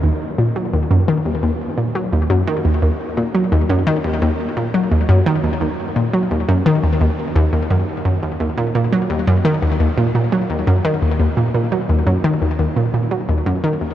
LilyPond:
\new Staff \with { instrumentName = "Synth arpeggio sound" } { \clef bass \time 4/4 \key ees \minor \tempo 4 = 86 ees,16 r16 bes,16 ges16 ees,16 ges,16 ees16 ees,16 ees,16 r16 bes,16 ges16 ees,16 ges,16 ees16 ees,16 | ees,16 r16 bes,16 ges16 ees,16 ges,16 ees16 ees,16 ees,16 r16 bes,16 ges16 ees,16 ges,16 ees16 ees,16 | ees,16 r16 bes,16 ges16 ees,16 ges,16 ees16 ees,16 ees,16 r16 ees,16 ees,16 ges,16 r16 ges,16 ees,16 | ees,16 bes,16 bes,16 ges16 ees,16 ges,16 ees16 ees,16 ees,16 bes,16 bes,16 ges16 ees,16 ges,16 ees16 ees,16 |
ees,16 bes,16 bes,16 ges16 ees,16 ges,16 ees16 ees,16 ees,16 bes,16 bes,16 ges16 ees,16 ges,16 ees16 ees,16 | }